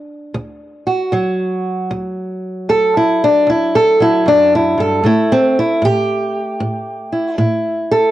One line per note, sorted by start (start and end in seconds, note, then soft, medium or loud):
0.00 0.29 D2 medium
0.00 1.25 D4 soft
0.34 1.08 D2 medium
0.87 1.88 F#4 medium
1.12 1.85 D2 medium
1.12 3.99 F#3 medium
1.91 2.64 D2 medium
2.69 3.42 D2 medium
2.69 2.96 A4 medium
2.97 3.22 E4 medium
3.24 3.49 D4 medium
3.47 4.20 D2 medium
3.47 3.75 E4 medium
3.75 4.01 A4 medium
4.00 5.04 F#3 soft
4.00 4.27 E4 medium
4.26 4.77 F#2 medium
4.26 4.53 D4 medium
4.55 4.80 E4 medium
4.78 5.04 G2 medium
4.78 5.05 A4 medium
5.04 5.77 A2 medium
5.04 8.11 A3 soft
5.04 5.31 E4 medium
5.32 5.57 C4 medium
5.59 5.84 E4 medium
5.82 6.55 A2 medium
5.82 7.40 G4 medium
6.60 7.33 A2 medium
7.12 7.37 E4 soft
7.38 8.11 A2 medium
7.38 8.11 E4 soft
7.92 8.11 A4 medium